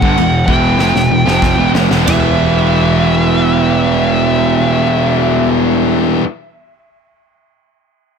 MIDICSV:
0, 0, Header, 1, 6, 480
1, 0, Start_track
1, 0, Key_signature, 1, "minor"
1, 0, Tempo, 630252
1, 1587, Time_signature, 4, 2, 24, 8
1, 1588, Tempo, 664452
1, 5995, End_track
2, 0, Start_track
2, 0, Title_t, "Lead electric guitar"
2, 0, Program_c, 0, 29
2, 0, Note_on_c, 0, 78, 91
2, 348, Note_off_c, 0, 78, 0
2, 351, Note_on_c, 0, 79, 88
2, 1295, Note_off_c, 0, 79, 0
2, 1572, Note_on_c, 0, 76, 86
2, 4047, Note_off_c, 0, 76, 0
2, 5995, End_track
3, 0, Start_track
3, 0, Title_t, "Distorted electric guitar"
3, 0, Program_c, 1, 30
3, 22, Note_on_c, 1, 43, 92
3, 24, Note_on_c, 1, 50, 107
3, 129, Note_off_c, 1, 43, 0
3, 132, Note_on_c, 1, 40, 68
3, 133, Note_off_c, 1, 50, 0
3, 136, Note_on_c, 1, 47, 73
3, 322, Note_off_c, 1, 40, 0
3, 325, Note_off_c, 1, 47, 0
3, 363, Note_on_c, 1, 40, 92
3, 370, Note_on_c, 1, 47, 96
3, 371, Note_on_c, 1, 52, 96
3, 597, Note_off_c, 1, 40, 0
3, 600, Note_off_c, 1, 47, 0
3, 601, Note_off_c, 1, 52, 0
3, 601, Note_on_c, 1, 41, 96
3, 606, Note_on_c, 1, 48, 109
3, 710, Note_off_c, 1, 48, 0
3, 711, Note_off_c, 1, 41, 0
3, 713, Note_on_c, 1, 47, 83
3, 714, Note_on_c, 1, 40, 73
3, 823, Note_off_c, 1, 40, 0
3, 825, Note_off_c, 1, 47, 0
3, 833, Note_on_c, 1, 40, 70
3, 834, Note_on_c, 1, 47, 74
3, 949, Note_off_c, 1, 40, 0
3, 952, Note_on_c, 1, 41, 91
3, 955, Note_off_c, 1, 47, 0
3, 958, Note_on_c, 1, 48, 97
3, 962, Note_on_c, 1, 53, 118
3, 1196, Note_off_c, 1, 41, 0
3, 1198, Note_off_c, 1, 48, 0
3, 1199, Note_on_c, 1, 40, 83
3, 1201, Note_on_c, 1, 47, 97
3, 1202, Note_off_c, 1, 53, 0
3, 1318, Note_off_c, 1, 40, 0
3, 1321, Note_on_c, 1, 41, 94
3, 1323, Note_off_c, 1, 47, 0
3, 1329, Note_on_c, 1, 48, 101
3, 1445, Note_off_c, 1, 41, 0
3, 1448, Note_on_c, 1, 40, 94
3, 1449, Note_off_c, 1, 48, 0
3, 1452, Note_on_c, 1, 47, 111
3, 1569, Note_off_c, 1, 47, 0
3, 1572, Note_on_c, 1, 52, 92
3, 1573, Note_off_c, 1, 40, 0
3, 1583, Note_on_c, 1, 55, 99
3, 1591, Note_on_c, 1, 59, 110
3, 1602, Note_on_c, 1, 64, 109
3, 4582, Note_off_c, 1, 52, 0
3, 4587, Note_off_c, 1, 55, 0
3, 4591, Note_off_c, 1, 59, 0
3, 4596, Note_off_c, 1, 64, 0
3, 5995, End_track
4, 0, Start_track
4, 0, Title_t, "Distorted electric guitar"
4, 0, Program_c, 2, 30
4, 1571, Note_on_c, 2, 40, 94
4, 1587, Note_on_c, 2, 47, 103
4, 4581, Note_off_c, 2, 40, 0
4, 4589, Note_off_c, 2, 47, 0
4, 5995, End_track
5, 0, Start_track
5, 0, Title_t, "Picked electric bass"
5, 0, Program_c, 3, 34
5, 20, Note_on_c, 3, 31, 96
5, 130, Note_off_c, 3, 31, 0
5, 138, Note_on_c, 3, 28, 81
5, 356, Note_off_c, 3, 28, 0
5, 368, Note_on_c, 3, 28, 103
5, 590, Note_off_c, 3, 28, 0
5, 601, Note_on_c, 3, 29, 102
5, 715, Note_off_c, 3, 29, 0
5, 723, Note_on_c, 3, 28, 81
5, 835, Note_off_c, 3, 28, 0
5, 840, Note_on_c, 3, 28, 81
5, 956, Note_off_c, 3, 28, 0
5, 962, Note_on_c, 3, 29, 97
5, 1193, Note_off_c, 3, 29, 0
5, 1200, Note_on_c, 3, 28, 100
5, 1321, Note_off_c, 3, 28, 0
5, 1324, Note_on_c, 3, 29, 98
5, 1446, Note_off_c, 3, 29, 0
5, 1455, Note_on_c, 3, 28, 95
5, 1572, Note_off_c, 3, 28, 0
5, 1576, Note_on_c, 3, 28, 96
5, 4555, Note_off_c, 3, 28, 0
5, 5995, End_track
6, 0, Start_track
6, 0, Title_t, "Drums"
6, 18, Note_on_c, 9, 36, 94
6, 94, Note_off_c, 9, 36, 0
6, 134, Note_on_c, 9, 52, 64
6, 210, Note_off_c, 9, 52, 0
6, 365, Note_on_c, 9, 36, 86
6, 441, Note_off_c, 9, 36, 0
6, 603, Note_on_c, 9, 38, 66
6, 679, Note_off_c, 9, 38, 0
6, 729, Note_on_c, 9, 38, 60
6, 805, Note_off_c, 9, 38, 0
6, 971, Note_on_c, 9, 38, 76
6, 1047, Note_off_c, 9, 38, 0
6, 1083, Note_on_c, 9, 36, 88
6, 1087, Note_on_c, 9, 38, 89
6, 1159, Note_off_c, 9, 36, 0
6, 1163, Note_off_c, 9, 38, 0
6, 1333, Note_on_c, 9, 38, 112
6, 1409, Note_off_c, 9, 38, 0
6, 1457, Note_on_c, 9, 38, 100
6, 1533, Note_off_c, 9, 38, 0
6, 1581, Note_on_c, 9, 43, 109
6, 1581, Note_on_c, 9, 53, 95
6, 1583, Note_on_c, 9, 38, 114
6, 1654, Note_off_c, 9, 43, 0
6, 1654, Note_off_c, 9, 53, 0
6, 1655, Note_off_c, 9, 38, 0
6, 5995, End_track
0, 0, End_of_file